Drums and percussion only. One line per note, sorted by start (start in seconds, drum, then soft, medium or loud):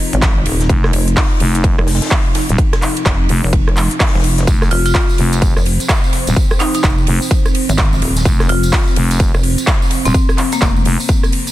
0.13 closed hi-hat medium
0.22 kick loud
0.22 snare loud
0.22 clap loud
0.22 closed hi-hat medium
0.22 ride medium
0.45 open hi-hat loud
0.45 ride medium
0.60 snare medium
0.60 closed hi-hat medium
0.69 kick loud
0.69 closed hi-hat medium
0.69 ride medium
0.84 cross-stick medium
0.84 snare soft
0.93 open hi-hat loud
0.93 ride medium
1.08 closed hi-hat medium
1.17 kick loud
1.17 snare loud
1.17 clap loud
1.17 closed hi-hat medium
1.17 open hi-hat medium
1.40 open hi-hat loud
1.40 ride medium
1.55 closed hi-hat medium
1.55 ride soft
1.64 kick loud
1.64 closed hi-hat medium
1.64 ride medium
1.78 cross-stick medium
1.87 snare medium
1.87 open hi-hat medium
1.87 open hi-hat loud
1.95 snare medium
1.95 open hi-hat medium
2.02 snare medium
2.02 closed hi-hat medium
2.02 open hi-hat medium
2.06 snare medium
2.06 open hi-hat medium
2.11 kick loud
2.11 snare loud
2.11 clap loud
2.11 closed hi-hat medium
2.11 ride medium
2.35 snare loud
2.35 open hi-hat loud
2.35 ride medium
2.49 closed hi-hat medium
2.58 kick loud
2.58 closed hi-hat medium
2.58 ride medium
2.73 cross-stick medium
2.73 snare loud
2.73 ride medium
2.82 clap medium
2.82 open hi-hat loud
2.97 closed hi-hat medium
2.97 ride medium
3.06 kick loud
3.06 snare loud
3.06 clap loud
3.06 closed hi-hat medium
3.06 ride medium
3.29 open hi-hat loud
3.29 ride medium
3.44 open hi-hat medium
3.53 kick loud
3.53 ride medium
3.68 cross-stick medium
3.68 ride soft
3.77 clap medium
3.77 open hi-hat loud
3.91 closed hi-hat medium
4.00 kick loud
4.00 snare medium
4.00 clap loud
4.00 closed hi-hat medium
4.00 open hi-hat medium
4.07 snare medium
4.07 open hi-hat medium
4.14 snare medium
4.14 open hi-hat medium
4.19 snare medium
4.19 open hi-hat medium
4.24 open hi-hat loud
4.24 ride medium
4.38 snare medium
4.38 closed hi-hat medium
4.47 kick loud
4.47 closed hi-hat medium
4.47 ride medium
4.47 tambourine medium
4.62 cross-stick medium
4.62 snare soft
4.62 tambourine soft
4.71 open hi-hat loud
4.71 ride medium
4.86 closed hi-hat medium
4.86 tambourine medium
4.94 kick loud
4.94 snare loud
4.94 clap loud
4.94 closed hi-hat medium
4.94 open hi-hat medium
4.94 tambourine medium
5.09 tambourine soft
5.18 open hi-hat loud
5.18 ride medium
5.32 closed hi-hat medium
5.32 ride soft
5.32 tambourine medium
5.42 kick loud
5.42 closed hi-hat medium
5.42 ride medium
5.42 tambourine medium
5.57 cross-stick medium
5.57 tambourine soft
5.66 open hi-hat loud
5.66 ride medium
5.80 closed hi-hat medium
5.80 tambourine medium
5.89 kick loud
5.89 snare loud
5.89 clap loud
5.89 closed hi-hat medium
5.89 ride medium
5.89 tambourine medium
6.04 tambourine soft
6.13 snare medium
6.13 open hi-hat loud
6.13 ride medium
6.27 snare soft
6.27 closed hi-hat medium
6.27 tambourine medium
6.36 kick loud
6.36 closed hi-hat medium
6.36 ride medium
6.36 tambourine medium
6.51 cross-stick medium
6.51 tambourine soft
6.59 clap medium
6.59 open hi-hat loud
6.59 ride medium
6.74 closed hi-hat medium
6.74 ride soft
6.74 tambourine medium
6.83 kick loud
6.83 snare loud
6.83 clap loud
6.83 closed hi-hat medium
6.83 ride medium
6.83 tambourine medium
6.98 tambourine soft
7.07 open hi-hat loud
7.07 ride medium
7.22 open hi-hat medium
7.22 tambourine medium
7.31 kick loud
7.31 ride medium
7.31 tambourine medium
7.45 cross-stick medium
7.45 ride soft
7.45 tambourine soft
7.55 open hi-hat loud
7.55 ride medium
7.69 closed hi-hat medium
7.69 tambourine medium
7.78 kick loud
7.78 snare loud
7.78 clap loud
7.78 closed hi-hat medium
7.78 ride medium
7.78 tambourine medium
7.93 tambourine soft
8.02 open hi-hat loud
8.02 ride medium
8.16 snare medium
8.16 closed hi-hat medium
8.16 tambourine medium
8.25 kick loud
8.25 closed hi-hat soft
8.25 ride medium
8.25 tambourine medium
8.40 cross-stick medium
8.40 snare soft
8.40 tambourine soft
8.49 open hi-hat loud
8.49 ride medium
8.63 closed hi-hat medium
8.63 tambourine medium
8.72 kick loud
8.72 snare loud
8.72 clap loud
8.72 closed hi-hat medium
8.72 open hi-hat medium
8.72 tambourine medium
8.87 tambourine soft
8.96 open hi-hat loud
8.96 ride medium
9.11 closed hi-hat medium
9.11 ride soft
9.11 tambourine medium
9.20 kick loud
9.20 closed hi-hat soft
9.20 ride medium
9.20 tambourine medium
9.34 cross-stick medium
9.34 tambourine soft
9.43 open hi-hat loud
9.43 ride medium
9.58 closed hi-hat medium
9.58 tambourine medium
9.67 kick loud
9.67 snare loud
9.67 clap loud
9.67 closed hi-hat medium
9.67 ride medium
9.82 tambourine soft
9.90 snare medium
9.90 open hi-hat loud
9.90 ride medium
10.05 snare soft
10.05 closed hi-hat medium
10.05 tambourine medium
10.14 kick loud
10.14 closed hi-hat soft
10.14 ride medium
10.14 tambourine medium
10.29 cross-stick medium
10.29 tambourine soft
10.38 clap medium
10.38 open hi-hat loud
10.38 ride medium
10.52 closed hi-hat medium
10.52 ride soft
10.52 tambourine medium
10.61 kick loud
10.61 snare loud
10.61 clap loud
10.61 closed hi-hat medium
10.61 ride medium
10.61 tambourine medium
10.76 tambourine soft
10.85 open hi-hat loud
10.85 ride medium
11.00 open hi-hat medium
11.00 tambourine medium
11.08 kick loud
11.08 closed hi-hat medium
11.08 ride medium
11.08 tambourine medium
11.23 cross-stick medium
11.23 ride soft
11.23 tambourine soft
11.32 open hi-hat loud
11.32 ride medium
11.47 closed hi-hat medium
11.47 tambourine medium